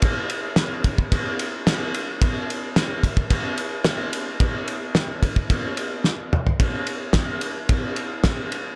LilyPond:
\new DrumStaff \with { instrumentName = "Drums" } \drummode { \time 4/4 \tempo 4 = 110 <bd cymr>8 cymr8 <cymr sn>8 <bd cymr>16 bd16 <bd cymr>8 cymr8 <cymr sn>8 cymr8 | <bd cymr>8 cymr8 <cymr sn>8 <bd cymr>16 bd16 <bd cymr>8 cymr8 <cymr sn>8 cymr8 | <bd cymr>8 cymr8 <cymr sn>8 <bd cymr>16 bd16 <bd cymr>8 cymr8 sn8 toml16 tomfh16 | <bd cymr>8 cymr8 <bd cymr sn>8 cymr8 <bd cymr>8 cymr8 <bd cymr sn>8 cymr8 | }